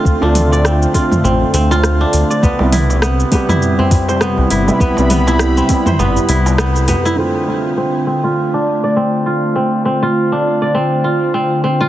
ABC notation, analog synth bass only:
X:1
M:4/4
L:1/16
Q:"Swing 16ths" 1/4=101
K:Ddor
V:1 name="Analog synth bass" clef=bass
D,, D,,4 z3 A,,, z D,,3 z D,, z | C,, C,,4 z8 C,, G,,, z | C,, C,,4 z3 G,,, z C,,4 z2 | z16 |
z16 |]